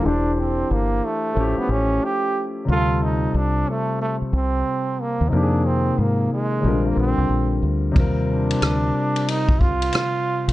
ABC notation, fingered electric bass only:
X:1
M:4/4
L:1/16
Q:"Swing 16ths" 1/4=91
K:Dphr
V:1 name="Fingered electric bass" clef=bass
=E,,,4 G,,,2 z2 A,,, z A,,,2 z4 | D,,4 C,,2 z4 C,,2 z3 E,, | F,,4 _A,,2 z2 B,,,2 B,,, C,, B,,,2 D,,2 | E,,4 D,,2 z4 C,,2 z3 B,,, |]